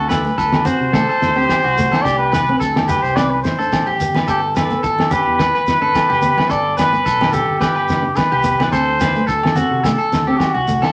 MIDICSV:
0, 0, Header, 1, 9, 480
1, 0, Start_track
1, 0, Key_signature, 1, "major"
1, 0, Tempo, 556070
1, 1774, Time_signature, 4, 2, 24, 8
1, 9426, End_track
2, 0, Start_track
2, 0, Title_t, "Trumpet"
2, 0, Program_c, 0, 56
2, 88, Note_on_c, 0, 69, 77
2, 197, Note_off_c, 0, 69, 0
2, 322, Note_on_c, 0, 71, 83
2, 565, Note_on_c, 0, 72, 105
2, 578, Note_off_c, 0, 71, 0
2, 1748, Note_on_c, 0, 74, 96
2, 1761, Note_off_c, 0, 72, 0
2, 1876, Note_off_c, 0, 74, 0
2, 1882, Note_on_c, 0, 71, 86
2, 2218, Note_off_c, 0, 71, 0
2, 2240, Note_on_c, 0, 69, 77
2, 2352, Note_off_c, 0, 69, 0
2, 2486, Note_on_c, 0, 71, 85
2, 2612, Note_on_c, 0, 72, 94
2, 2625, Note_off_c, 0, 71, 0
2, 2727, Note_on_c, 0, 74, 90
2, 2740, Note_off_c, 0, 72, 0
2, 2851, Note_on_c, 0, 71, 81
2, 2864, Note_off_c, 0, 74, 0
2, 2957, Note_off_c, 0, 71, 0
2, 2962, Note_on_c, 0, 72, 75
2, 3415, Note_off_c, 0, 72, 0
2, 3703, Note_on_c, 0, 67, 90
2, 3810, Note_off_c, 0, 67, 0
2, 3944, Note_on_c, 0, 69, 83
2, 4423, Note_on_c, 0, 71, 102
2, 4436, Note_off_c, 0, 69, 0
2, 5615, Note_on_c, 0, 74, 101
2, 5628, Note_off_c, 0, 71, 0
2, 5852, Note_off_c, 0, 74, 0
2, 5857, Note_on_c, 0, 71, 100
2, 6322, Note_on_c, 0, 69, 91
2, 6335, Note_off_c, 0, 71, 0
2, 6554, Note_off_c, 0, 69, 0
2, 6559, Note_on_c, 0, 67, 89
2, 7050, Note_on_c, 0, 71, 98
2, 7063, Note_off_c, 0, 67, 0
2, 7519, Note_off_c, 0, 71, 0
2, 7524, Note_on_c, 0, 72, 103
2, 8003, Note_on_c, 0, 69, 88
2, 8016, Note_off_c, 0, 72, 0
2, 8470, Note_off_c, 0, 69, 0
2, 8475, Note_on_c, 0, 69, 90
2, 8951, Note_on_c, 0, 66, 73
2, 8964, Note_off_c, 0, 69, 0
2, 9202, Note_off_c, 0, 66, 0
2, 9426, End_track
3, 0, Start_track
3, 0, Title_t, "Clean electric guitar"
3, 0, Program_c, 1, 27
3, 79, Note_on_c, 1, 71, 75
3, 313, Note_off_c, 1, 71, 0
3, 325, Note_on_c, 1, 69, 76
3, 557, Note_off_c, 1, 69, 0
3, 560, Note_on_c, 1, 66, 79
3, 794, Note_off_c, 1, 66, 0
3, 806, Note_on_c, 1, 69, 79
3, 931, Note_off_c, 1, 69, 0
3, 941, Note_on_c, 1, 69, 67
3, 1171, Note_off_c, 1, 69, 0
3, 1181, Note_on_c, 1, 67, 67
3, 1411, Note_off_c, 1, 67, 0
3, 1420, Note_on_c, 1, 66, 60
3, 1650, Note_off_c, 1, 66, 0
3, 1655, Note_on_c, 1, 69, 64
3, 1763, Note_on_c, 1, 67, 90
3, 1764, Note_off_c, 1, 69, 0
3, 1997, Note_off_c, 1, 67, 0
3, 2002, Note_on_c, 1, 71, 76
3, 2236, Note_off_c, 1, 71, 0
3, 2246, Note_on_c, 1, 69, 78
3, 2479, Note_off_c, 1, 69, 0
3, 2486, Note_on_c, 1, 67, 66
3, 2719, Note_off_c, 1, 67, 0
3, 2727, Note_on_c, 1, 71, 88
3, 2855, Note_off_c, 1, 71, 0
3, 3096, Note_on_c, 1, 69, 71
3, 3329, Note_off_c, 1, 69, 0
3, 3335, Note_on_c, 1, 67, 70
3, 3569, Note_off_c, 1, 67, 0
3, 3585, Note_on_c, 1, 71, 59
3, 3688, Note_off_c, 1, 71, 0
3, 3691, Note_on_c, 1, 69, 75
3, 3922, Note_off_c, 1, 69, 0
3, 3942, Note_on_c, 1, 71, 71
3, 4167, Note_off_c, 1, 71, 0
3, 4171, Note_on_c, 1, 69, 80
3, 4401, Note_off_c, 1, 69, 0
3, 4409, Note_on_c, 1, 67, 69
3, 4641, Note_off_c, 1, 67, 0
3, 4657, Note_on_c, 1, 71, 84
3, 4780, Note_off_c, 1, 71, 0
3, 4790, Note_on_c, 1, 71, 69
3, 5017, Note_off_c, 1, 71, 0
3, 5021, Note_on_c, 1, 69, 69
3, 5252, Note_off_c, 1, 69, 0
3, 5260, Note_on_c, 1, 67, 70
3, 5491, Note_off_c, 1, 67, 0
3, 5503, Note_on_c, 1, 71, 71
3, 5604, Note_off_c, 1, 71, 0
3, 5607, Note_on_c, 1, 69, 75
3, 5840, Note_off_c, 1, 69, 0
3, 5845, Note_on_c, 1, 71, 70
3, 6078, Note_off_c, 1, 71, 0
3, 6090, Note_on_c, 1, 69, 79
3, 6321, Note_off_c, 1, 69, 0
3, 6329, Note_on_c, 1, 67, 71
3, 6560, Note_off_c, 1, 67, 0
3, 6567, Note_on_c, 1, 71, 83
3, 6687, Note_off_c, 1, 71, 0
3, 6698, Note_on_c, 1, 71, 75
3, 6930, Note_off_c, 1, 71, 0
3, 7180, Note_on_c, 1, 67, 77
3, 7411, Note_off_c, 1, 67, 0
3, 7419, Note_on_c, 1, 71, 66
3, 7526, Note_off_c, 1, 71, 0
3, 7532, Note_on_c, 1, 69, 76
3, 7761, Note_off_c, 1, 69, 0
3, 7778, Note_on_c, 1, 71, 73
3, 8000, Note_off_c, 1, 71, 0
3, 8004, Note_on_c, 1, 69, 85
3, 8237, Note_off_c, 1, 69, 0
3, 8249, Note_on_c, 1, 66, 73
3, 8479, Note_off_c, 1, 66, 0
3, 8618, Note_on_c, 1, 69, 75
3, 8849, Note_off_c, 1, 69, 0
3, 8866, Note_on_c, 1, 67, 74
3, 9093, Note_off_c, 1, 67, 0
3, 9101, Note_on_c, 1, 66, 72
3, 9330, Note_off_c, 1, 66, 0
3, 9339, Note_on_c, 1, 69, 66
3, 9426, Note_off_c, 1, 69, 0
3, 9426, End_track
4, 0, Start_track
4, 0, Title_t, "Nylon-string guitar"
4, 0, Program_c, 2, 24
4, 211, Note_on_c, 2, 57, 65
4, 369, Note_off_c, 2, 57, 0
4, 566, Note_on_c, 2, 60, 70
4, 723, Note_off_c, 2, 60, 0
4, 806, Note_on_c, 2, 57, 84
4, 963, Note_off_c, 2, 57, 0
4, 1172, Note_on_c, 2, 60, 70
4, 1331, Note_off_c, 2, 60, 0
4, 1527, Note_on_c, 2, 57, 65
4, 1684, Note_off_c, 2, 57, 0
4, 1768, Note_on_c, 2, 62, 80
4, 1925, Note_off_c, 2, 62, 0
4, 2151, Note_on_c, 2, 60, 73
4, 2304, Note_off_c, 2, 60, 0
4, 2729, Note_on_c, 2, 60, 81
4, 2886, Note_off_c, 2, 60, 0
4, 3100, Note_on_c, 2, 62, 72
4, 3258, Note_off_c, 2, 62, 0
4, 3460, Note_on_c, 2, 59, 57
4, 3614, Note_off_c, 2, 59, 0
4, 4071, Note_on_c, 2, 59, 66
4, 4225, Note_off_c, 2, 59, 0
4, 4419, Note_on_c, 2, 62, 72
4, 4573, Note_off_c, 2, 62, 0
4, 4655, Note_on_c, 2, 59, 78
4, 4810, Note_off_c, 2, 59, 0
4, 5018, Note_on_c, 2, 62, 69
4, 5176, Note_off_c, 2, 62, 0
4, 5365, Note_on_c, 2, 59, 70
4, 5524, Note_off_c, 2, 59, 0
4, 5978, Note_on_c, 2, 59, 69
4, 6136, Note_off_c, 2, 59, 0
4, 6323, Note_on_c, 2, 62, 81
4, 6482, Note_off_c, 2, 62, 0
4, 6557, Note_on_c, 2, 59, 79
4, 6718, Note_off_c, 2, 59, 0
4, 6923, Note_on_c, 2, 62, 79
4, 7085, Note_off_c, 2, 62, 0
4, 7280, Note_on_c, 2, 59, 64
4, 7440, Note_off_c, 2, 59, 0
4, 7529, Note_on_c, 2, 60, 81
4, 7686, Note_off_c, 2, 60, 0
4, 7902, Note_on_c, 2, 57, 65
4, 8058, Note_off_c, 2, 57, 0
4, 8256, Note_on_c, 2, 60, 74
4, 8410, Note_off_c, 2, 60, 0
4, 8504, Note_on_c, 2, 57, 87
4, 8655, Note_off_c, 2, 57, 0
4, 8869, Note_on_c, 2, 60, 78
4, 9023, Note_off_c, 2, 60, 0
4, 9214, Note_on_c, 2, 57, 67
4, 9368, Note_off_c, 2, 57, 0
4, 9426, End_track
5, 0, Start_track
5, 0, Title_t, "Fingered electric bass"
5, 0, Program_c, 3, 33
5, 0, Note_on_c, 3, 38, 106
5, 261, Note_off_c, 3, 38, 0
5, 330, Note_on_c, 3, 38, 83
5, 536, Note_off_c, 3, 38, 0
5, 695, Note_on_c, 3, 48, 79
5, 904, Note_off_c, 3, 48, 0
5, 1057, Note_on_c, 3, 38, 72
5, 1260, Note_off_c, 3, 38, 0
5, 1423, Note_on_c, 3, 36, 89
5, 1629, Note_off_c, 3, 36, 0
5, 1770, Note_on_c, 3, 36, 91
5, 2182, Note_off_c, 3, 36, 0
5, 2250, Note_on_c, 3, 38, 77
5, 2569, Note_off_c, 3, 38, 0
5, 2618, Note_on_c, 3, 36, 84
5, 2968, Note_off_c, 3, 36, 0
5, 2968, Note_on_c, 3, 33, 73
5, 3176, Note_off_c, 3, 33, 0
5, 3218, Note_on_c, 3, 33, 73
5, 3433, Note_off_c, 3, 33, 0
5, 3455, Note_on_c, 3, 31, 82
5, 3671, Note_off_c, 3, 31, 0
5, 3696, Note_on_c, 3, 31, 102
5, 4106, Note_off_c, 3, 31, 0
5, 4178, Note_on_c, 3, 31, 82
5, 4382, Note_off_c, 3, 31, 0
5, 4545, Note_on_c, 3, 40, 86
5, 4751, Note_off_c, 3, 40, 0
5, 4901, Note_on_c, 3, 31, 70
5, 5104, Note_off_c, 3, 31, 0
5, 5268, Note_on_c, 3, 30, 78
5, 5473, Note_off_c, 3, 30, 0
5, 5619, Note_on_c, 3, 31, 103
5, 6028, Note_off_c, 3, 31, 0
5, 6096, Note_on_c, 3, 35, 78
5, 6413, Note_off_c, 3, 35, 0
5, 6462, Note_on_c, 3, 31, 88
5, 6810, Note_off_c, 3, 31, 0
5, 6810, Note_on_c, 3, 30, 69
5, 7017, Note_off_c, 3, 30, 0
5, 7184, Note_on_c, 3, 36, 86
5, 7482, Note_off_c, 3, 36, 0
5, 7531, Note_on_c, 3, 38, 109
5, 7942, Note_off_c, 3, 38, 0
5, 8014, Note_on_c, 3, 38, 82
5, 8219, Note_off_c, 3, 38, 0
5, 8380, Note_on_c, 3, 48, 86
5, 8587, Note_off_c, 3, 48, 0
5, 8734, Note_on_c, 3, 38, 82
5, 8938, Note_off_c, 3, 38, 0
5, 9108, Note_on_c, 3, 36, 82
5, 9311, Note_off_c, 3, 36, 0
5, 9426, End_track
6, 0, Start_track
6, 0, Title_t, "Muted clean electric guitar strokes"
6, 8491, Note_on_c, 9, 29, 91
6, 8577, Note_off_c, 9, 29, 0
6, 9426, End_track
7, 0, Start_track
7, 0, Title_t, "Muted nylon-string guitar strokes"
7, 3694, Note_on_c, 9, 29, 87
7, 3781, Note_off_c, 9, 29, 0
7, 5604, Note_on_c, 9, 29, 81
7, 5690, Note_off_c, 9, 29, 0
7, 9426, End_track
8, 0, Start_track
8, 0, Title_t, "Shekere"
8, 92, Note_on_c, 9, 82, 106
8, 179, Note_off_c, 9, 82, 0
8, 228, Note_on_c, 9, 82, 26
8, 314, Note_off_c, 9, 82, 0
8, 335, Note_on_c, 9, 82, 67
8, 422, Note_off_c, 9, 82, 0
8, 573, Note_on_c, 9, 82, 98
8, 660, Note_off_c, 9, 82, 0
8, 818, Note_on_c, 9, 82, 71
8, 904, Note_off_c, 9, 82, 0
8, 1058, Note_on_c, 9, 82, 88
8, 1144, Note_off_c, 9, 82, 0
8, 1298, Note_on_c, 9, 82, 73
8, 1384, Note_off_c, 9, 82, 0
8, 1536, Note_on_c, 9, 82, 86
8, 1623, Note_off_c, 9, 82, 0
8, 1778, Note_on_c, 9, 82, 74
8, 1864, Note_off_c, 9, 82, 0
8, 2020, Note_on_c, 9, 82, 92
8, 2106, Note_off_c, 9, 82, 0
8, 2255, Note_on_c, 9, 82, 64
8, 2342, Note_off_c, 9, 82, 0
8, 2494, Note_on_c, 9, 82, 94
8, 2580, Note_off_c, 9, 82, 0
8, 2629, Note_on_c, 9, 82, 30
8, 2715, Note_off_c, 9, 82, 0
8, 2739, Note_on_c, 9, 82, 80
8, 2825, Note_off_c, 9, 82, 0
8, 2971, Note_on_c, 9, 82, 85
8, 3057, Note_off_c, 9, 82, 0
8, 3111, Note_on_c, 9, 82, 27
8, 3197, Note_off_c, 9, 82, 0
8, 3215, Note_on_c, 9, 82, 80
8, 3301, Note_off_c, 9, 82, 0
8, 3457, Note_on_c, 9, 82, 94
8, 3543, Note_off_c, 9, 82, 0
8, 3591, Note_on_c, 9, 82, 26
8, 3677, Note_off_c, 9, 82, 0
8, 3693, Note_on_c, 9, 82, 68
8, 3779, Note_off_c, 9, 82, 0
8, 3933, Note_on_c, 9, 82, 90
8, 4019, Note_off_c, 9, 82, 0
8, 4064, Note_on_c, 9, 82, 23
8, 4150, Note_off_c, 9, 82, 0
8, 4173, Note_on_c, 9, 82, 65
8, 4259, Note_off_c, 9, 82, 0
8, 4414, Note_on_c, 9, 82, 93
8, 4500, Note_off_c, 9, 82, 0
8, 4661, Note_on_c, 9, 82, 66
8, 4747, Note_off_c, 9, 82, 0
8, 4895, Note_on_c, 9, 82, 89
8, 4981, Note_off_c, 9, 82, 0
8, 5133, Note_on_c, 9, 82, 78
8, 5220, Note_off_c, 9, 82, 0
8, 5370, Note_on_c, 9, 82, 85
8, 5456, Note_off_c, 9, 82, 0
8, 5611, Note_on_c, 9, 82, 69
8, 5697, Note_off_c, 9, 82, 0
8, 5853, Note_on_c, 9, 82, 96
8, 5939, Note_off_c, 9, 82, 0
8, 5989, Note_on_c, 9, 82, 24
8, 6076, Note_off_c, 9, 82, 0
8, 6099, Note_on_c, 9, 82, 71
8, 6186, Note_off_c, 9, 82, 0
8, 6328, Note_on_c, 9, 82, 93
8, 6414, Note_off_c, 9, 82, 0
8, 6577, Note_on_c, 9, 82, 70
8, 6664, Note_off_c, 9, 82, 0
8, 6807, Note_on_c, 9, 82, 83
8, 6893, Note_off_c, 9, 82, 0
8, 7042, Note_on_c, 9, 82, 78
8, 7128, Note_off_c, 9, 82, 0
8, 7281, Note_on_c, 9, 82, 99
8, 7367, Note_off_c, 9, 82, 0
8, 7532, Note_on_c, 9, 82, 71
8, 7618, Note_off_c, 9, 82, 0
8, 7772, Note_on_c, 9, 82, 108
8, 7858, Note_off_c, 9, 82, 0
8, 7903, Note_on_c, 9, 82, 27
8, 7990, Note_off_c, 9, 82, 0
8, 8016, Note_on_c, 9, 82, 71
8, 8103, Note_off_c, 9, 82, 0
8, 8256, Note_on_c, 9, 82, 86
8, 8342, Note_off_c, 9, 82, 0
8, 8503, Note_on_c, 9, 82, 76
8, 8589, Note_off_c, 9, 82, 0
8, 8742, Note_on_c, 9, 82, 76
8, 8828, Note_off_c, 9, 82, 0
8, 8982, Note_on_c, 9, 82, 73
8, 9068, Note_off_c, 9, 82, 0
8, 9218, Note_on_c, 9, 82, 85
8, 9305, Note_off_c, 9, 82, 0
8, 9426, End_track
9, 0, Start_track
9, 0, Title_t, "Drums"
9, 92, Note_on_c, 9, 38, 62
9, 92, Note_on_c, 9, 68, 66
9, 178, Note_off_c, 9, 38, 0
9, 178, Note_off_c, 9, 68, 0
9, 215, Note_on_c, 9, 63, 70
9, 301, Note_off_c, 9, 63, 0
9, 327, Note_on_c, 9, 38, 27
9, 329, Note_on_c, 9, 36, 88
9, 413, Note_off_c, 9, 38, 0
9, 415, Note_off_c, 9, 36, 0
9, 452, Note_on_c, 9, 64, 59
9, 453, Note_on_c, 9, 38, 68
9, 468, Note_on_c, 9, 68, 58
9, 539, Note_off_c, 9, 38, 0
9, 539, Note_off_c, 9, 64, 0
9, 554, Note_off_c, 9, 68, 0
9, 562, Note_on_c, 9, 63, 73
9, 562, Note_on_c, 9, 64, 76
9, 648, Note_off_c, 9, 63, 0
9, 648, Note_off_c, 9, 64, 0
9, 804, Note_on_c, 9, 38, 70
9, 810, Note_on_c, 9, 36, 86
9, 813, Note_on_c, 9, 68, 56
9, 891, Note_off_c, 9, 38, 0
9, 896, Note_off_c, 9, 36, 0
9, 899, Note_off_c, 9, 68, 0
9, 943, Note_on_c, 9, 38, 24
9, 1029, Note_off_c, 9, 38, 0
9, 1054, Note_on_c, 9, 38, 59
9, 1140, Note_off_c, 9, 38, 0
9, 1289, Note_on_c, 9, 38, 65
9, 1292, Note_on_c, 9, 36, 85
9, 1301, Note_on_c, 9, 68, 59
9, 1376, Note_off_c, 9, 38, 0
9, 1378, Note_off_c, 9, 36, 0
9, 1388, Note_off_c, 9, 68, 0
9, 1417, Note_on_c, 9, 63, 58
9, 1503, Note_off_c, 9, 63, 0
9, 1534, Note_on_c, 9, 64, 65
9, 1620, Note_off_c, 9, 64, 0
9, 1665, Note_on_c, 9, 63, 68
9, 1668, Note_on_c, 9, 38, 61
9, 1677, Note_on_c, 9, 68, 60
9, 1751, Note_off_c, 9, 63, 0
9, 1754, Note_off_c, 9, 38, 0
9, 1763, Note_off_c, 9, 68, 0
9, 1774, Note_on_c, 9, 36, 82
9, 1860, Note_off_c, 9, 36, 0
9, 2012, Note_on_c, 9, 38, 63
9, 2024, Note_on_c, 9, 68, 74
9, 2099, Note_off_c, 9, 38, 0
9, 2110, Note_off_c, 9, 68, 0
9, 2150, Note_on_c, 9, 63, 70
9, 2236, Note_off_c, 9, 63, 0
9, 2254, Note_on_c, 9, 36, 84
9, 2340, Note_off_c, 9, 36, 0
9, 2384, Note_on_c, 9, 38, 73
9, 2389, Note_on_c, 9, 68, 62
9, 2391, Note_on_c, 9, 64, 59
9, 2471, Note_off_c, 9, 38, 0
9, 2475, Note_off_c, 9, 68, 0
9, 2477, Note_off_c, 9, 64, 0
9, 2495, Note_on_c, 9, 63, 75
9, 2495, Note_on_c, 9, 64, 67
9, 2582, Note_off_c, 9, 63, 0
9, 2582, Note_off_c, 9, 64, 0
9, 2733, Note_on_c, 9, 38, 68
9, 2735, Note_on_c, 9, 36, 87
9, 2741, Note_on_c, 9, 68, 59
9, 2819, Note_off_c, 9, 38, 0
9, 2821, Note_off_c, 9, 36, 0
9, 2827, Note_off_c, 9, 68, 0
9, 2979, Note_on_c, 9, 38, 61
9, 3066, Note_off_c, 9, 38, 0
9, 3216, Note_on_c, 9, 36, 79
9, 3218, Note_on_c, 9, 38, 66
9, 3221, Note_on_c, 9, 68, 63
9, 3302, Note_off_c, 9, 36, 0
9, 3304, Note_off_c, 9, 38, 0
9, 3307, Note_off_c, 9, 68, 0
9, 3342, Note_on_c, 9, 63, 61
9, 3428, Note_off_c, 9, 63, 0
9, 3452, Note_on_c, 9, 64, 62
9, 3538, Note_off_c, 9, 64, 0
9, 3577, Note_on_c, 9, 63, 72
9, 3592, Note_on_c, 9, 38, 63
9, 3592, Note_on_c, 9, 68, 64
9, 3663, Note_off_c, 9, 63, 0
9, 3678, Note_off_c, 9, 38, 0
9, 3678, Note_off_c, 9, 68, 0
9, 3698, Note_on_c, 9, 36, 75
9, 3784, Note_off_c, 9, 36, 0
9, 3942, Note_on_c, 9, 38, 66
9, 3943, Note_on_c, 9, 68, 69
9, 4029, Note_off_c, 9, 38, 0
9, 4029, Note_off_c, 9, 68, 0
9, 4060, Note_on_c, 9, 63, 64
9, 4147, Note_off_c, 9, 63, 0
9, 4177, Note_on_c, 9, 36, 96
9, 4263, Note_off_c, 9, 36, 0
9, 4303, Note_on_c, 9, 64, 57
9, 4313, Note_on_c, 9, 38, 68
9, 4315, Note_on_c, 9, 68, 61
9, 4390, Note_off_c, 9, 64, 0
9, 4400, Note_off_c, 9, 38, 0
9, 4402, Note_off_c, 9, 68, 0
9, 4411, Note_on_c, 9, 63, 82
9, 4411, Note_on_c, 9, 64, 74
9, 4498, Note_off_c, 9, 63, 0
9, 4498, Note_off_c, 9, 64, 0
9, 4655, Note_on_c, 9, 36, 96
9, 4656, Note_on_c, 9, 38, 62
9, 4663, Note_on_c, 9, 68, 57
9, 4741, Note_off_c, 9, 36, 0
9, 4742, Note_off_c, 9, 38, 0
9, 4750, Note_off_c, 9, 68, 0
9, 4791, Note_on_c, 9, 38, 23
9, 4877, Note_off_c, 9, 38, 0
9, 4903, Note_on_c, 9, 38, 56
9, 4989, Note_off_c, 9, 38, 0
9, 5138, Note_on_c, 9, 36, 89
9, 5145, Note_on_c, 9, 68, 60
9, 5147, Note_on_c, 9, 38, 62
9, 5224, Note_off_c, 9, 36, 0
9, 5231, Note_off_c, 9, 68, 0
9, 5233, Note_off_c, 9, 38, 0
9, 5265, Note_on_c, 9, 63, 69
9, 5283, Note_on_c, 9, 38, 25
9, 5351, Note_off_c, 9, 63, 0
9, 5369, Note_off_c, 9, 38, 0
9, 5376, Note_on_c, 9, 64, 69
9, 5462, Note_off_c, 9, 64, 0
9, 5504, Note_on_c, 9, 63, 79
9, 5511, Note_on_c, 9, 68, 66
9, 5520, Note_on_c, 9, 38, 59
9, 5590, Note_off_c, 9, 63, 0
9, 5597, Note_off_c, 9, 68, 0
9, 5607, Note_off_c, 9, 38, 0
9, 5619, Note_on_c, 9, 36, 78
9, 5705, Note_off_c, 9, 36, 0
9, 5860, Note_on_c, 9, 68, 68
9, 5864, Note_on_c, 9, 38, 67
9, 5946, Note_off_c, 9, 68, 0
9, 5951, Note_off_c, 9, 38, 0
9, 5982, Note_on_c, 9, 63, 74
9, 6068, Note_off_c, 9, 63, 0
9, 6095, Note_on_c, 9, 36, 94
9, 6181, Note_off_c, 9, 36, 0
9, 6225, Note_on_c, 9, 64, 70
9, 6228, Note_on_c, 9, 68, 64
9, 6234, Note_on_c, 9, 38, 71
9, 6311, Note_off_c, 9, 64, 0
9, 6314, Note_off_c, 9, 68, 0
9, 6320, Note_off_c, 9, 38, 0
9, 6334, Note_on_c, 9, 63, 75
9, 6334, Note_on_c, 9, 64, 73
9, 6420, Note_off_c, 9, 63, 0
9, 6420, Note_off_c, 9, 64, 0
9, 6574, Note_on_c, 9, 36, 94
9, 6579, Note_on_c, 9, 38, 62
9, 6579, Note_on_c, 9, 68, 59
9, 6660, Note_off_c, 9, 36, 0
9, 6666, Note_off_c, 9, 38, 0
9, 6666, Note_off_c, 9, 68, 0
9, 6819, Note_on_c, 9, 38, 60
9, 6906, Note_off_c, 9, 38, 0
9, 7052, Note_on_c, 9, 68, 66
9, 7056, Note_on_c, 9, 36, 87
9, 7063, Note_on_c, 9, 38, 67
9, 7138, Note_off_c, 9, 68, 0
9, 7142, Note_off_c, 9, 36, 0
9, 7149, Note_off_c, 9, 38, 0
9, 7183, Note_on_c, 9, 63, 61
9, 7270, Note_off_c, 9, 63, 0
9, 7286, Note_on_c, 9, 64, 64
9, 7372, Note_off_c, 9, 64, 0
9, 7424, Note_on_c, 9, 63, 63
9, 7424, Note_on_c, 9, 68, 62
9, 7431, Note_on_c, 9, 38, 62
9, 7510, Note_off_c, 9, 68, 0
9, 7511, Note_off_c, 9, 63, 0
9, 7517, Note_off_c, 9, 38, 0
9, 7533, Note_on_c, 9, 36, 89
9, 7619, Note_off_c, 9, 36, 0
9, 7775, Note_on_c, 9, 68, 66
9, 7783, Note_on_c, 9, 38, 67
9, 7862, Note_off_c, 9, 68, 0
9, 7869, Note_off_c, 9, 38, 0
9, 7907, Note_on_c, 9, 63, 67
9, 7993, Note_off_c, 9, 63, 0
9, 8016, Note_on_c, 9, 36, 88
9, 8102, Note_off_c, 9, 36, 0
9, 8142, Note_on_c, 9, 68, 59
9, 8143, Note_on_c, 9, 64, 58
9, 8162, Note_on_c, 9, 38, 73
9, 8229, Note_off_c, 9, 68, 0
9, 8230, Note_off_c, 9, 64, 0
9, 8248, Note_off_c, 9, 38, 0
9, 8249, Note_on_c, 9, 63, 69
9, 8249, Note_on_c, 9, 64, 69
9, 8335, Note_off_c, 9, 63, 0
9, 8335, Note_off_c, 9, 64, 0
9, 8495, Note_on_c, 9, 68, 62
9, 8496, Note_on_c, 9, 36, 96
9, 8501, Note_on_c, 9, 38, 66
9, 8582, Note_off_c, 9, 68, 0
9, 8583, Note_off_c, 9, 36, 0
9, 8587, Note_off_c, 9, 38, 0
9, 8744, Note_on_c, 9, 38, 70
9, 8831, Note_off_c, 9, 38, 0
9, 8976, Note_on_c, 9, 36, 88
9, 8976, Note_on_c, 9, 68, 62
9, 8981, Note_on_c, 9, 38, 69
9, 9063, Note_off_c, 9, 36, 0
9, 9063, Note_off_c, 9, 68, 0
9, 9067, Note_off_c, 9, 38, 0
9, 9105, Note_on_c, 9, 63, 66
9, 9191, Note_off_c, 9, 63, 0
9, 9212, Note_on_c, 9, 64, 59
9, 9298, Note_off_c, 9, 64, 0
9, 9342, Note_on_c, 9, 63, 65
9, 9346, Note_on_c, 9, 68, 56
9, 9348, Note_on_c, 9, 38, 62
9, 9426, Note_off_c, 9, 38, 0
9, 9426, Note_off_c, 9, 63, 0
9, 9426, Note_off_c, 9, 68, 0
9, 9426, End_track
0, 0, End_of_file